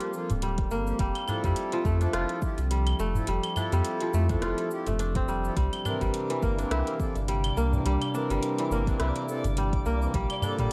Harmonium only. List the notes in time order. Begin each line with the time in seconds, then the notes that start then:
Already playing: F3 A#3 G4
0.13 F3 A#3 F4
0.86 F3 A#3 G4
1.26 F3 E4 A4
2.00 F3 E4 A4
2.41 F3 E4 G4
3.14 F3 E4 A4
3.54 F3 E4
3.58 A4
4.30 F3 E4 A4
4.70 F3 E4 G4
5.44 F3 E4 A4
5.84 E3 C4 A#4
6.58 E3 C4 A#4
6.98 E3 C4 A4
7.72 E3 C4 A#4
8.12 E3 C4
8.16 A#4
8.86 E3 C4 A#4
9.27 E3 C4 A4
10.01 E3 C4 A#4
10.41 D3 A#3 A4